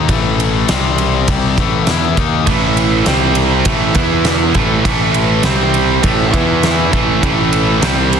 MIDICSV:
0, 0, Header, 1, 4, 480
1, 0, Start_track
1, 0, Key_signature, 0, "minor"
1, 0, Tempo, 594648
1, 73, Time_signature, 4, 2, 24, 8
1, 6618, End_track
2, 0, Start_track
2, 0, Title_t, "Distorted electric guitar"
2, 0, Program_c, 0, 30
2, 72, Note_on_c, 0, 45, 89
2, 83, Note_on_c, 0, 57, 114
2, 85, Note_on_c, 0, 52, 104
2, 546, Note_off_c, 0, 45, 0
2, 552, Note_off_c, 0, 52, 0
2, 552, Note_off_c, 0, 57, 0
2, 552, Note_on_c, 0, 48, 87
2, 557, Note_on_c, 0, 55, 90
2, 563, Note_on_c, 0, 60, 92
2, 1026, Note_off_c, 0, 48, 0
2, 1029, Note_off_c, 0, 55, 0
2, 1032, Note_off_c, 0, 60, 0
2, 1036, Note_on_c, 0, 48, 79
2, 1041, Note_on_c, 0, 55, 95
2, 1049, Note_on_c, 0, 60, 83
2, 1268, Note_off_c, 0, 48, 0
2, 1271, Note_off_c, 0, 55, 0
2, 1275, Note_off_c, 0, 60, 0
2, 1283, Note_on_c, 0, 45, 86
2, 1289, Note_on_c, 0, 52, 90
2, 1289, Note_on_c, 0, 57, 84
2, 1512, Note_off_c, 0, 45, 0
2, 1515, Note_off_c, 0, 52, 0
2, 1515, Note_off_c, 0, 57, 0
2, 1526, Note_on_c, 0, 52, 78
2, 1530, Note_on_c, 0, 59, 78
2, 1535, Note_on_c, 0, 64, 87
2, 1750, Note_off_c, 0, 52, 0
2, 1753, Note_on_c, 0, 51, 70
2, 1754, Note_off_c, 0, 59, 0
2, 1758, Note_off_c, 0, 64, 0
2, 1758, Note_on_c, 0, 58, 84
2, 1762, Note_on_c, 0, 63, 77
2, 1987, Note_off_c, 0, 51, 0
2, 1989, Note_off_c, 0, 58, 0
2, 1992, Note_off_c, 0, 63, 0
2, 1997, Note_on_c, 0, 45, 80
2, 2004, Note_on_c, 0, 52, 101
2, 2012, Note_on_c, 0, 57, 94
2, 2469, Note_off_c, 0, 45, 0
2, 2473, Note_off_c, 0, 52, 0
2, 2475, Note_on_c, 0, 48, 93
2, 2477, Note_off_c, 0, 57, 0
2, 2477, Note_on_c, 0, 55, 96
2, 2482, Note_on_c, 0, 60, 103
2, 2948, Note_off_c, 0, 48, 0
2, 2950, Note_off_c, 0, 55, 0
2, 2952, Note_off_c, 0, 60, 0
2, 2954, Note_on_c, 0, 45, 85
2, 2959, Note_on_c, 0, 52, 88
2, 2960, Note_on_c, 0, 57, 96
2, 3186, Note_off_c, 0, 52, 0
2, 3188, Note_off_c, 0, 45, 0
2, 3191, Note_off_c, 0, 57, 0
2, 3196, Note_on_c, 0, 52, 77
2, 3207, Note_on_c, 0, 59, 84
2, 3209, Note_on_c, 0, 64, 89
2, 3669, Note_off_c, 0, 52, 0
2, 3673, Note_on_c, 0, 45, 78
2, 3675, Note_off_c, 0, 59, 0
2, 3675, Note_off_c, 0, 64, 0
2, 3682, Note_on_c, 0, 52, 80
2, 3686, Note_on_c, 0, 57, 88
2, 3904, Note_off_c, 0, 45, 0
2, 3909, Note_off_c, 0, 52, 0
2, 3912, Note_off_c, 0, 57, 0
2, 3914, Note_on_c, 0, 45, 90
2, 3919, Note_on_c, 0, 52, 98
2, 3922, Note_on_c, 0, 57, 109
2, 4388, Note_off_c, 0, 45, 0
2, 4390, Note_off_c, 0, 52, 0
2, 4392, Note_off_c, 0, 57, 0
2, 4394, Note_on_c, 0, 48, 91
2, 4399, Note_on_c, 0, 60, 98
2, 4400, Note_on_c, 0, 55, 91
2, 4856, Note_off_c, 0, 48, 0
2, 4859, Note_on_c, 0, 45, 79
2, 4861, Note_off_c, 0, 55, 0
2, 4865, Note_on_c, 0, 52, 76
2, 4866, Note_off_c, 0, 60, 0
2, 4869, Note_on_c, 0, 57, 83
2, 5105, Note_off_c, 0, 45, 0
2, 5105, Note_off_c, 0, 52, 0
2, 5105, Note_on_c, 0, 52, 85
2, 5109, Note_on_c, 0, 59, 101
2, 5117, Note_off_c, 0, 57, 0
2, 5117, Note_on_c, 0, 64, 90
2, 5583, Note_off_c, 0, 52, 0
2, 5585, Note_off_c, 0, 59, 0
2, 5590, Note_off_c, 0, 64, 0
2, 5590, Note_on_c, 0, 45, 76
2, 5595, Note_on_c, 0, 52, 74
2, 5597, Note_on_c, 0, 57, 77
2, 5822, Note_off_c, 0, 45, 0
2, 5825, Note_off_c, 0, 52, 0
2, 5830, Note_off_c, 0, 57, 0
2, 5832, Note_on_c, 0, 45, 103
2, 5835, Note_on_c, 0, 52, 96
2, 5841, Note_on_c, 0, 57, 108
2, 6307, Note_off_c, 0, 45, 0
2, 6308, Note_off_c, 0, 52, 0
2, 6310, Note_on_c, 0, 48, 88
2, 6312, Note_off_c, 0, 57, 0
2, 6314, Note_on_c, 0, 55, 89
2, 6319, Note_on_c, 0, 60, 93
2, 6618, Note_off_c, 0, 48, 0
2, 6618, Note_off_c, 0, 55, 0
2, 6618, Note_off_c, 0, 60, 0
2, 6618, End_track
3, 0, Start_track
3, 0, Title_t, "Picked electric bass"
3, 0, Program_c, 1, 34
3, 73, Note_on_c, 1, 33, 77
3, 521, Note_off_c, 1, 33, 0
3, 568, Note_on_c, 1, 36, 89
3, 1009, Note_off_c, 1, 36, 0
3, 1035, Note_on_c, 1, 36, 90
3, 1258, Note_off_c, 1, 36, 0
3, 1271, Note_on_c, 1, 33, 91
3, 1496, Note_off_c, 1, 33, 0
3, 1522, Note_on_c, 1, 40, 96
3, 1742, Note_off_c, 1, 40, 0
3, 1754, Note_on_c, 1, 39, 100
3, 1978, Note_off_c, 1, 39, 0
3, 1996, Note_on_c, 1, 33, 75
3, 2444, Note_off_c, 1, 33, 0
3, 2474, Note_on_c, 1, 36, 80
3, 2923, Note_off_c, 1, 36, 0
3, 2951, Note_on_c, 1, 33, 90
3, 3176, Note_off_c, 1, 33, 0
3, 3192, Note_on_c, 1, 40, 92
3, 3642, Note_off_c, 1, 40, 0
3, 3676, Note_on_c, 1, 33, 94
3, 3899, Note_off_c, 1, 33, 0
3, 3914, Note_on_c, 1, 33, 85
3, 4363, Note_off_c, 1, 33, 0
3, 4394, Note_on_c, 1, 36, 89
3, 4843, Note_off_c, 1, 36, 0
3, 4876, Note_on_c, 1, 33, 98
3, 5100, Note_off_c, 1, 33, 0
3, 5116, Note_on_c, 1, 40, 96
3, 5564, Note_off_c, 1, 40, 0
3, 5594, Note_on_c, 1, 33, 88
3, 5819, Note_off_c, 1, 33, 0
3, 5840, Note_on_c, 1, 33, 93
3, 6286, Note_off_c, 1, 33, 0
3, 6312, Note_on_c, 1, 36, 87
3, 6618, Note_off_c, 1, 36, 0
3, 6618, End_track
4, 0, Start_track
4, 0, Title_t, "Drums"
4, 70, Note_on_c, 9, 51, 88
4, 72, Note_on_c, 9, 36, 91
4, 150, Note_off_c, 9, 51, 0
4, 152, Note_off_c, 9, 36, 0
4, 321, Note_on_c, 9, 51, 70
4, 402, Note_off_c, 9, 51, 0
4, 553, Note_on_c, 9, 51, 89
4, 556, Note_on_c, 9, 38, 108
4, 634, Note_off_c, 9, 51, 0
4, 637, Note_off_c, 9, 38, 0
4, 793, Note_on_c, 9, 51, 62
4, 874, Note_off_c, 9, 51, 0
4, 1031, Note_on_c, 9, 51, 92
4, 1034, Note_on_c, 9, 36, 110
4, 1112, Note_off_c, 9, 51, 0
4, 1115, Note_off_c, 9, 36, 0
4, 1273, Note_on_c, 9, 36, 101
4, 1275, Note_on_c, 9, 51, 61
4, 1354, Note_off_c, 9, 36, 0
4, 1356, Note_off_c, 9, 51, 0
4, 1507, Note_on_c, 9, 51, 75
4, 1511, Note_on_c, 9, 38, 88
4, 1588, Note_off_c, 9, 51, 0
4, 1591, Note_off_c, 9, 38, 0
4, 1754, Note_on_c, 9, 36, 86
4, 1755, Note_on_c, 9, 51, 58
4, 1835, Note_off_c, 9, 36, 0
4, 1836, Note_off_c, 9, 51, 0
4, 1992, Note_on_c, 9, 51, 91
4, 1995, Note_on_c, 9, 36, 88
4, 2073, Note_off_c, 9, 51, 0
4, 2076, Note_off_c, 9, 36, 0
4, 2236, Note_on_c, 9, 51, 73
4, 2316, Note_off_c, 9, 51, 0
4, 2470, Note_on_c, 9, 51, 81
4, 2473, Note_on_c, 9, 38, 97
4, 2550, Note_off_c, 9, 51, 0
4, 2554, Note_off_c, 9, 38, 0
4, 2705, Note_on_c, 9, 51, 67
4, 2785, Note_off_c, 9, 51, 0
4, 2947, Note_on_c, 9, 51, 105
4, 2952, Note_on_c, 9, 36, 108
4, 3028, Note_off_c, 9, 51, 0
4, 3032, Note_off_c, 9, 36, 0
4, 3185, Note_on_c, 9, 51, 72
4, 3192, Note_on_c, 9, 36, 102
4, 3266, Note_off_c, 9, 51, 0
4, 3273, Note_off_c, 9, 36, 0
4, 3427, Note_on_c, 9, 51, 79
4, 3431, Note_on_c, 9, 38, 95
4, 3508, Note_off_c, 9, 51, 0
4, 3511, Note_off_c, 9, 38, 0
4, 3668, Note_on_c, 9, 51, 56
4, 3673, Note_on_c, 9, 36, 76
4, 3749, Note_off_c, 9, 51, 0
4, 3754, Note_off_c, 9, 36, 0
4, 3916, Note_on_c, 9, 36, 96
4, 3917, Note_on_c, 9, 51, 89
4, 3996, Note_off_c, 9, 36, 0
4, 3998, Note_off_c, 9, 51, 0
4, 4152, Note_on_c, 9, 51, 75
4, 4232, Note_off_c, 9, 51, 0
4, 4384, Note_on_c, 9, 51, 93
4, 4388, Note_on_c, 9, 38, 110
4, 4465, Note_off_c, 9, 51, 0
4, 4468, Note_off_c, 9, 38, 0
4, 4632, Note_on_c, 9, 51, 66
4, 4713, Note_off_c, 9, 51, 0
4, 4870, Note_on_c, 9, 51, 91
4, 4875, Note_on_c, 9, 36, 105
4, 4951, Note_off_c, 9, 51, 0
4, 4955, Note_off_c, 9, 36, 0
4, 5115, Note_on_c, 9, 36, 110
4, 5115, Note_on_c, 9, 51, 64
4, 5195, Note_off_c, 9, 36, 0
4, 5195, Note_off_c, 9, 51, 0
4, 5354, Note_on_c, 9, 51, 66
4, 5357, Note_on_c, 9, 38, 100
4, 5434, Note_off_c, 9, 51, 0
4, 5438, Note_off_c, 9, 38, 0
4, 5595, Note_on_c, 9, 36, 85
4, 5595, Note_on_c, 9, 51, 55
4, 5675, Note_off_c, 9, 51, 0
4, 5676, Note_off_c, 9, 36, 0
4, 5836, Note_on_c, 9, 36, 92
4, 5837, Note_on_c, 9, 51, 76
4, 5917, Note_off_c, 9, 36, 0
4, 5918, Note_off_c, 9, 51, 0
4, 6075, Note_on_c, 9, 51, 72
4, 6156, Note_off_c, 9, 51, 0
4, 6316, Note_on_c, 9, 51, 90
4, 6319, Note_on_c, 9, 38, 106
4, 6396, Note_off_c, 9, 51, 0
4, 6400, Note_off_c, 9, 38, 0
4, 6561, Note_on_c, 9, 51, 65
4, 6618, Note_off_c, 9, 51, 0
4, 6618, End_track
0, 0, End_of_file